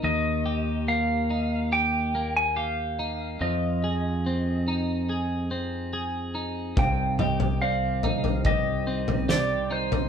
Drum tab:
SD |----------------|----------------|------------o---|
T2 |----------------|----------------|--o-------------|
FT |----------------|----------------|o--o--ooo--o---o|
BD |----------------|----------------|o-------o-------|